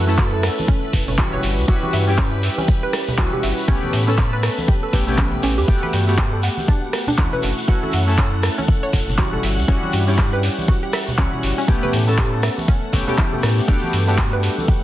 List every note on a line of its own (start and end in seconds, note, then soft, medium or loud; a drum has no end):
0.00 0.49 F#2 medium
0.00 5.69 B4 medium
0.00 5.69 B5 medium
0.07 1.15 A3 medium
0.07 1.16 C#4 medium
0.07 1.16 E4 medium
0.07 1.16 A4 medium
0.07 shekere medium
0.18 0.29 F#4 medium
0.18 kick loud
0.18 clap loud
0.33 0.41 A4 medium
0.43 0.48 F#5 medium
0.43 cross-stick medium
0.43 open hi-hat loud
0.43 shekere loud
0.58 high conga medium
0.58 shekere medium
0.67 0.79 C#4 loud
0.67 kick loud
0.67 shekere soft
0.93 1.37 F#1 medium
0.93 kick medium
0.93 open hi-hat loud
0.93 shekere medium
1.07 1.11 C#4 medium
1.07 low conga medium
1.07 shekere medium
1.17 1.66 G3 medium
1.17 1.66 C#4 medium
1.17 1.66 E4 medium
1.17 1.66 F#4 medium
1.17 kick loud
1.17 clap loud
1.17 high conga loud
1.17 shekere soft
1.33 1.41 C#5 loud
1.33 low conga medium
1.43 1.60 G1 medium
1.43 open hi-hat loud
1.43 shekere medium
1.58 1.64 C#2 medium
1.58 shekere medium
1.68 1.77 G1 loud
1.68 2.04 G3 medium
1.68 2.04 C#4 medium
1.68 2.05 E4 medium
1.68 1.79 F#4 medium
1.68 2.05 F#4 loud
1.68 kick loud
1.83 1.91 G4 medium
1.83 high conga medium
1.93 2.49 G2 medium
1.93 1.98 E5 medium
1.93 open hi-hat loud
1.93 shekere loud
2.07 3.15 G3 medium
2.07 3.16 C#4 medium
2.07 3.16 E4 medium
2.07 3.16 G4 medium
2.07 shekere medium
2.18 2.29 C#4 loud
2.18 kick loud
2.18 clap loud
2.43 open hi-hat loud
2.43 shekere medium
2.58 2.61 C#4 medium
2.58 high conga medium
2.58 shekere medium
2.68 kick loud
2.68 shekere soft
2.83 2.91 B4 loud
2.93 cross-stick medium
2.93 open hi-hat loud
2.93 shekere medium
3.07 low conga medium
3.07 shekere medium
3.18 3.27 C#2 loud
3.18 3.66 G3 medium
3.18 3.66 C#4 medium
3.18 3.66 E4 medium
3.18 3.29 F#4 medium
3.18 3.66 F#4 medium
3.18 kick loud
3.18 clap loud
3.18 high conga medium
3.33 3.41 G4 medium
3.33 low conga medium
3.43 3.52 G1 medium
3.43 3.48 E5 medium
3.43 open hi-hat medium
3.43 shekere medium
3.58 shekere medium
3.68 3.77 A1 loud
3.68 4.04 A3 medium
3.68 4.04 B3 medium
3.68 3.79 C#4 loud
3.68 4.05 C#4 medium
3.68 4.05 G4 medium
3.68 kick loud
3.83 high conga medium
3.83 low conga medium
3.93 4.49 A2 medium
3.93 open hi-hat loud
3.93 shekere loud
4.07 4.91 A3 medium
4.07 4.91 B3 medium
4.07 4.11 C#4 medium
4.07 4.91 C#4 medium
4.07 4.92 A4 medium
4.07 shekere medium
4.18 kick loud
4.18 clap loud
4.33 4.41 B4 loud
4.43 cross-stick medium
4.43 open hi-hat loud
4.43 shekere loud
4.58 high conga medium
4.58 shekere soft
4.68 4.79 G4 medium
4.68 kick loud
4.83 4.91 A4 medium
4.93 5.37 A1 medium
4.93 5.04 A3 medium
4.93 5.04 B3 medium
4.93 5.05 C#4 medium
4.93 5.05 G4 medium
4.93 5.04 B4 medium
4.93 kick medium
4.93 open hi-hat loud
4.93 shekere medium
5.07 5.65 A3 medium
5.07 5.66 B3 medium
5.07 5.66 C#4 medium
5.07 5.66 G4 medium
5.07 low conga medium
5.07 shekere medium
5.18 5.23 C#4 loud
5.18 kick loud
5.18 clap loud
5.18 high conga loud
5.33 low conga medium
5.43 5.59 A1 medium
5.43 5.54 C#4 medium
5.43 open hi-hat loud
5.43 shekere loud
5.58 5.64 E2 medium
5.58 5.63 G4 medium
5.58 shekere medium
5.68 5.77 G1 loud
5.68 6.04 A3 medium
5.68 6.04 B3 medium
5.68 6.05 F#4 medium
5.68 6.05 G4 medium
5.68 13.67 F#5 medium
5.68 13.67 F#6 medium
5.68 kick loud
5.83 5.91 B4 loud
5.83 high conga medium
5.93 6.49 G2 medium
5.93 open hi-hat loud
5.93 shekere medium
6.07 7.15 A3 medium
6.07 7.16 B3 medium
6.07 7.16 F#4 medium
6.07 7.16 G4 medium
6.07 shekere medium
6.18 6.29 G4 medium
6.18 kick loud
6.18 clap loud
6.33 6.41 A4 medium
6.43 6.48 F#5 medium
6.43 open hi-hat loud
6.43 shekere medium
6.57 high conga medium
6.57 shekere soft
6.68 6.79 D4 loud
6.68 kick loud
6.93 cross-stick medium
6.93 open hi-hat loud
6.93 shekere medium
7.07 7.11 D4 medium
7.07 low conga medium
7.07 shekere medium
7.18 7.27 D2 loud
7.18 7.66 A3 medium
7.18 7.66 C#4 medium
7.18 7.66 E4 medium
7.18 7.66 F#4 medium
7.18 kick loud
7.18 clap loud
7.18 high conga medium
7.33 7.41 B4 loud
7.33 low conga medium
7.43 7.52 F#1 medium
7.43 open hi-hat medium
7.43 shekere loud
7.58 shekere medium
7.68 7.77 F#1 loud
7.68 8.04 A3 medium
7.68 8.04 C#4 medium
7.68 8.05 E4 medium
7.68 7.79 F#4 medium
7.68 8.05 F#4 loud
7.68 kick loud
7.83 7.91 A4 medium
7.83 high conga medium
7.92 8.49 F#2 medium
7.92 7.98 F#5 medium
7.92 open hi-hat loud
7.92 shekere medium
8.07 9.15 A3 medium
8.07 9.16 C#4 medium
8.07 9.16 E4 medium
8.07 9.16 A4 medium
8.07 shekere medium
8.18 8.29 C#4 loud
8.18 kick loud
8.18 clap loud
8.43 cross-stick medium
8.43 open hi-hat medium
8.43 shekere medium
8.57 8.61 C#4 medium
8.57 high conga medium
8.57 shekere soft
8.68 kick loud
8.68 shekere soft
8.83 8.91 C#5 loud
8.93 9.37 F#1 medium
8.93 kick medium
8.93 open hi-hat loud
8.93 shekere medium
9.09 low conga medium
9.09 shekere soft
9.18 9.66 G3 medium
9.18 9.66 C#4 medium
9.18 9.66 E4 medium
9.18 9.29 F#4 medium
9.18 9.66 F#4 medium
9.18 kick loud
9.18 clap loud
9.18 high conga medium
9.33 9.41 A4 medium
9.33 low conga medium
9.43 9.59 G1 medium
9.43 9.48 E5 medium
9.43 open hi-hat medium
9.43 shekere loud
9.58 9.64 C#2 medium
9.58 shekere medium
9.68 9.77 G1 loud
9.68 10.04 G3 medium
9.68 10.04 C#4 medium
9.68 9.79 C#4 loud
9.68 10.05 E4 medium
9.68 10.05 F#4 loud
9.68 kick loud
9.83 high conga medium
9.92 10.49 G2 medium
9.92 open hi-hat loud
9.92 shekere medium
10.07 11.15 G3 medium
10.07 11.16 C#4 medium
10.07 10.11 C#4 medium
10.07 11.16 E4 medium
10.07 11.16 G4 medium
10.07 shekere medium
10.18 kick loud
10.18 clap loud
10.33 10.41 B4 loud
10.43 open hi-hat medium
10.43 shekere medium
10.58 high conga medium
10.58 shekere soft
10.68 10.79 F#4 medium
10.68 kick loud
10.68 shekere soft
10.83 10.91 G4 medium
10.93 10.98 E5 medium
10.93 cross-stick medium
10.93 open hi-hat loud
10.93 shekere medium
11.07 low conga medium
11.07 shekere medium
11.18 11.28 C#2 loud
11.18 11.66 G3 medium
11.18 11.66 C#4 medium
11.18 11.29 C#4 loud
11.18 11.66 E4 medium
11.18 11.66 F#4 medium
11.18 kick loud
11.18 clap loud
11.18 high conga medium
11.33 low conga medium
11.43 11.52 G1 medium
11.43 open hi-hat medium
11.43 shekere medium
11.58 11.61 C#4 medium
11.58 shekere medium
11.68 11.77 A1 loud
11.68 12.04 A3 medium
11.68 12.04 B3 medium
11.68 12.05 C#4 medium
11.68 12.05 G4 loud
11.68 kick loud
11.83 11.91 B4 loud
11.83 high conga medium
11.83 low conga medium
11.93 12.49 A2 medium
11.93 open hi-hat loud
11.93 shekere medium
12.07 12.91 A3 medium
12.07 12.91 B3 medium
12.07 12.91 C#4 medium
12.07 12.92 A4 medium
12.07 shekere medium
12.18 12.29 G4 medium
12.18 kick loud
12.18 clap loud
12.33 12.41 A4 medium
12.42 12.48 E5 medium
12.42 cross-stick medium
12.42 open hi-hat medium
12.42 shekere medium
12.58 high conga medium
12.58 shekere medium
12.68 12.79 C#4 loud
12.68 kick loud
12.93 13.02 G1 loud
12.93 13.04 A3 medium
12.93 13.04 B3 medium
12.93 13.05 C#4 medium
12.93 13.05 G4 medium
12.93 kick medium
12.93 open hi-hat loud
12.93 shekere medium
13.07 13.65 A3 medium
13.07 13.66 B3 medium
13.07 13.66 C#4 medium
13.07 13.66 G4 loud
13.07 13.13 A4 medium
13.07 low conga medium
13.07 shekere soft
13.18 13.23 E4 loud
13.18 kick loud
13.18 clap loud
13.18 high conga medium
13.33 13.38 A4 medium
13.33 low conga medium
13.43 13.61 A2 loud
13.43 cross-stick medium
13.43 open hi-hat medium
13.43 shekere medium
13.58 shekere medium
13.68 13.78 G1 loud
13.68 14.84 G3 medium
13.68 14.04 A3 medium
13.68 14.04 B3 medium
13.68 13.79 D4 loud
13.68 14.84 D4 medium
13.68 14.05 F#4 medium
13.68 14.05 G4 loud
13.68 14.84 A4 medium
13.68 14.84 B4 medium
13.68 14.84 F#5 medium
13.68 14.84 F#6 medium
13.68 kick loud
13.68 crash medium
13.83 high conga medium
13.93 14.49 G2 medium
13.93 open hi-hat loud
13.93 shekere medium
14.07 14.84 A3 medium
14.07 14.84 B3 medium
14.07 14.11 D4 medium
14.07 14.84 F#4 medium
14.07 14.84 G4 medium
14.07 shekere soft
14.18 kick loud
14.18 clap loud
14.33 14.41 B4 loud
14.43 open hi-hat medium
14.43 shekere loud
14.58 high conga medium
14.58 shekere soft
14.68 14.79 G4 medium
14.68 kick loud
14.68 shekere soft